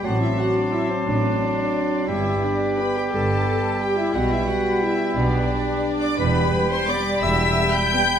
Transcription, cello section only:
X:1
M:3/4
L:1/8
Q:1/4=174
K:G
V:1 name="Cello section" clef=bass
A,,2 z4 | A,,2 z4 | G,,2 z4 | G,,2 z4 |
B,,2 z4 | B,,2 z4 | E,,2 z4 | E,,2 z4 |]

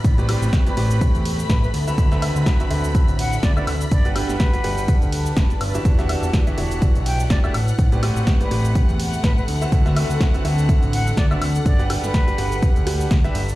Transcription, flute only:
X:1
M:4/4
L:1/16
Q:"Swing 16ths" 1/4=124
K:Dmix
V:1 name="Flute"
z4 z B3 z4 B B z2 | z8 z2 f z d d z2 | d z2 B6 z6 z | z8 z2 g z d d z2 |
z4 z B3 z4 B B z2 | z8 z2 f z d d z2 | d z2 B6 z6 z |]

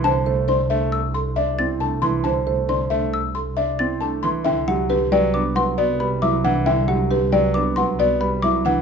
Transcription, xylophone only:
X:1
M:5/4
L:1/8
Q:1/4=136
K:Clyd
V:1 name="Xylophone"
a z c' z e' z2 a' z c' | a z c' z e' z2 a' z c' | g f z g d' c' z b d' z | g f z g d' c' z b d' z |]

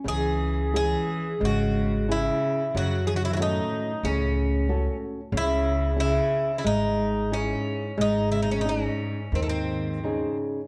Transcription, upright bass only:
X:1
M:4/4
L:1/8
Q:1/4=90
K:C#m
V:1 name="Upright bass" clef=bass
C,,4 G,,,4 | F,,4 C,,4 | C,,4 G,,,4 | G,,,4 D,,4 |]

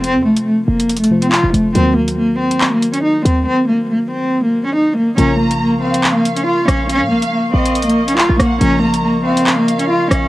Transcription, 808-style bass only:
X:1
M:4/4
L:1/16
Q:1/4=140
K:Bbm
V:1 name="808-style bass" clef=bass
F,,, F,, F,,, z3 F,,,6- F,,, F,,, F,,,2 | E,,8 z2 E,,2 z2 E,,2 | z16 | B,,,6 D,,3 B,,,3 z2 B,,,2- |
B,,, B,, B,,, z3 B,,,6- B,,, B,,, B,,,2 | B,,,8 D,2 B,,,2 z2 B,,,2 |]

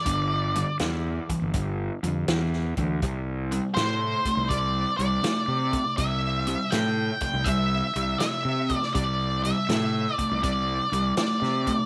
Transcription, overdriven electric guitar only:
X:1
M:4/4
L:1/8
Q:"Swing" 1/4=81
K:C
V:1 name="Overdriven electric guitar" clef=bass
[G,,D,] [G,,D,] [G,,E,] [G,,E,] [G,,D,] [G,,D,] [G,,E,] [G,,E,] | [C,G,] [C,G,] [C,A,] [C,A,] [C,G,] [C,G,] [C,A,] [C,A,] | [C,G,] [C,G,] [C,A,] [C,A,] [C,G,] [C,G,] [C,A,] [C,A,] | [C,G,] [C,G,] [C,A,] [C,A,] [C,G,] [C,G,] [C,A,] [C,A,] |]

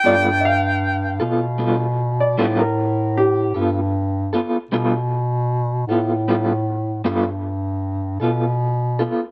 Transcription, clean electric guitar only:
X:1
M:12/8
L:1/8
Q:3/8=51
K:Gmix
V:1 name="Clean electric guitar"
[G,B,FA] z2 [B,FA] [G,B,FA] z [G,B,FA] z2 [B,FA] z [B,FA] | [G,B,FA] z2 [B,FA] [G,B,FA] z [G,B,FA] z2 [B,FA] z [B,FA] |]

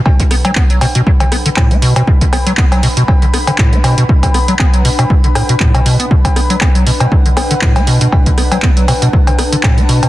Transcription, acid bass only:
X:1
M:4/4
L:1/16
Q:"Swing 16ths" 1/4=119
K:Bm
V:1 name="Acid bass" clef=bass
B,, D, B, F, B, F, B,, B,, F, D, B, D, A,, B, B,, B,, | B,, D, B, F, B, F, B,, B,, F, D, B, D, A,, B, B,, B,, | B,, D, B, F, B, F, B,, B,, F, D, A,, B,, A,, B,, B,, B, | B,, D, B, F, B, F, B,, B,, F, D, B, D, A,, B, B,, B,, |
B,, D, B, F, B, F, B,, B,, F, D, B, D, A,, B, B,, B,, |]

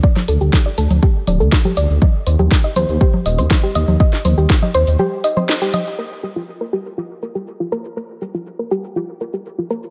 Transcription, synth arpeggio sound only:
X:1
M:4/4
L:1/16
Q:1/4=121
K:Gm
V:1 name="Synth arpeggio sound"
d z A G z d A z G z d A z G d z | e z c G z e c z G z e c z G e z | e z c G z e c z G z e c z G e z | B z G F z B G z F z B G z F B z |
B z G F z B G z F z B G z F B z |]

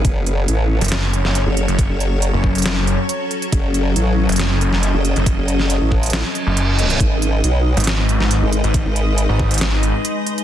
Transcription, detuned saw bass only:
X:1
M:4/4
L:1/16
Q:1/4=138
K:F#dor
V:1 name="Detuned saw bass" clef=bass
z6 z F,,,4 F,,,2 z2 F,,,- | F,,, z4 F,,,6 z4 z | z6 z F,,,4 F,,,2 z2 F,,,- | F,,, z8 z2 F,,,4- F,,, |
z6 z G,,,4 G,,,2 z2 G,,,- | G,,, z4 G,,,6 z4 z |]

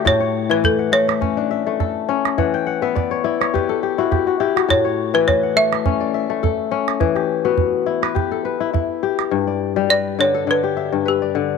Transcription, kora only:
X:1
M:4/4
L:1/16
Q:"Swing 16ths" 1/4=104
K:Amix
V:1 name="Kora"
G c2 B2 f2 e2 D e2 A3 z | f g f e d c d c B A G F G F E F- | F c2 B2 f2 e2 d e2 A3 z | z G2 F3 z B2 A B2 E3 z |
z d2 d B3 A2 G e2 B d3 |]
V:2 name="Kora"
A,,2 z E,2 z A,2 C2 z A,2 z C2 | E,2 z B,2 z E2 G2 z E2 z G2 | A,,2 z E,2 z A,2 C2 z A,2 z C2 | E,2 z B,2 z E2 G2 z E2 z G2 |
G,,2 z G,2 z D,2 D,2 z G,,2 z D,2 |]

